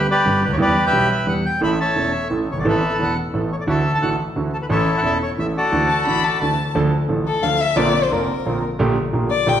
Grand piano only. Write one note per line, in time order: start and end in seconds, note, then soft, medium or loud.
0.25 0.40 G1 soft
0.25 0.40 G2 soft
0.25 0.40 D3 soft
0.25 0.40 G3 soft
0.25 0.40 B3 soft
0.25 0.40 G4 soft
0.47 0.51 C#2 soft
0.52 0.56 D2 medium
0.52 0.59 D#2 medium
0.58 0.74 E2 medium
0.58 0.73 E3 medium
0.58 0.73 G3 medium
0.58 0.73 B3 medium
0.58 0.73 G4 medium
0.92 1.08 B1 soft
0.92 1.08 B2 soft
0.92 1.07 E3 soft
0.92 1.08 G3 soft
0.92 1.07 B3 soft
0.92 1.08 G4 soft
1.27 1.42 E2 soft
1.27 1.42 E3 soft
1.27 1.42 G3 soft
1.27 1.42 B3 soft
1.27 1.42 G4 soft
1.61 1.76 A1 medium
1.61 1.76 A2 medium
1.61 1.76 E3 medium
1.61 1.76 A3 medium
1.61 1.76 C#4 medium
1.61 1.76 A4 medium
1.96 2.10 E1 soft
1.96 2.11 E2 soft
1.96 2.10 E3 soft
1.96 2.10 A3 soft
1.96 2.11 C#4 soft
1.96 2.11 A4 soft
2.30 2.45 A1 soft
2.30 2.45 A2 soft
2.30 2.45 E3 soft
2.30 2.45 A3 soft
2.30 2.45 C#4 soft
2.30 2.45 A4 soft
2.52 2.57 F#1 soft
2.57 2.61 G1 soft
2.57 2.65 G#1 medium
2.65 2.79 A1 medium
2.65 2.79 A2 medium
2.65 2.79 E3 medium
2.65 2.79 A3 soft
2.65 2.79 B3 medium
2.65 2.80 A4 medium
2.99 3.14 E1 soft
2.99 3.14 E2 soft
2.99 3.14 E3 soft
2.99 3.14 A3 soft
2.99 3.14 B3 soft
2.99 3.14 A4 soft
3.34 3.48 A1 soft
3.34 3.48 A2 soft
3.34 3.48 E3 soft
3.34 3.48 A3 soft
3.34 3.48 B3 soft
3.34 3.48 A4 soft
3.67 3.82 D2 medium
3.67 3.82 D3 medium
3.67 3.82 E3 medium
3.67 3.82 A3 medium
3.67 3.82 D4 medium
3.67 3.82 F#4 medium
4.02 4.16 A1 soft
4.02 4.16 A2 soft
4.02 4.16 E3 soft
4.02 4.16 A3 soft
4.02 4.16 D4 soft
4.02 4.17 F#4 soft
4.36 4.50 D2 soft
4.36 4.50 D3 soft
4.36 4.50 E3 soft
4.36 4.50 A3 soft
4.36 4.50 D4 soft
4.36 4.50 F#4 soft
4.69 4.84 A1 medium
4.69 4.84 A2 medium
4.69 4.84 E3 medium
4.69 4.84 A3 medium
4.69 4.84 C#4 medium
4.69 4.84 A4 medium
5.03 5.18 E1 soft
5.03 5.18 E2 soft
5.03 5.17 E3 soft
5.03 5.18 A3 soft
5.03 5.18 C#4 soft
5.03 5.18 A4 soft
5.38 5.53 A1 soft
5.38 5.52 A2 soft
5.38 5.52 E3 soft
5.38 5.53 A3 soft
5.38 5.53 C#4 soft
5.38 5.53 A4 soft
5.72 5.86 D2 medium
5.72 5.86 D3 medium
5.72 5.86 E3 medium
5.72 5.86 A3 medium
5.72 5.86 D4 medium
5.72 5.87 F#4 medium
6.07 6.21 A1 soft
6.07 6.21 A2 soft
6.07 6.21 E3 soft
6.07 6.21 A3 soft
6.07 6.21 D4 soft
6.07 6.21 F#4 soft
6.41 6.56 D2 soft
6.41 6.56 D3 soft
6.41 6.56 E3 soft
6.41 6.56 A3 soft
6.41 6.56 D4 soft
6.41 6.56 F#4 soft
6.75 6.90 D2 medium
6.75 6.90 D3 medium
6.75 6.89 F3 medium
6.75 6.90 A3 medium
6.75 6.90 D4 medium
6.75 6.90 A4 medium
7.09 7.23 A1 soft
7.09 7.24 A2 soft
7.09 7.23 F3 soft
7.09 7.24 A3 soft
7.09 7.24 D4 soft
7.09 7.24 A4 soft
7.43 7.58 D2 soft
7.43 7.58 D3 soft
7.43 7.57 F3 soft
7.43 7.58 A3 soft
7.43 7.58 D4 soft
7.43 7.58 A4 soft
7.76 7.91 A#1 medium
7.76 7.91 A#2 medium
7.76 7.91 D3 medium
7.76 7.91 A#3 medium
7.76 7.91 C4 medium
7.76 7.91 F4 medium
8.11 8.26 F1 soft
8.11 8.26 F2 soft
8.11 8.26 D3 soft
8.11 8.26 A#3 soft
8.11 8.26 C4 soft
8.11 8.26 F4 soft
8.46 8.60 A#1 medium
8.46 8.60 A#2 medium
8.46 8.60 D3 soft
8.46 8.60 A#3 soft
8.46 8.60 C4 soft
8.46 8.60 F4 soft
8.79 8.94 A#1 medium
8.79 8.94 A#2 medium
8.79 8.93 D3 medium
8.79 8.94 A3 medium
8.79 8.94 A#3 medium
8.79 8.94 G4 medium
9.13 9.28 A#1 soft
9.13 9.27 A#2 soft
9.13 9.27 D3 soft
9.13 9.27 A3 soft
9.13 9.28 A#3 soft
9.13 9.28 G4 soft
9.46 9.60 A#1 medium
9.46 9.60 A#2 medium
9.46 9.60 D3 soft
9.46 9.60 A3 soft
9.46 9.60 A#3 soft
9.46 9.60 G4 medium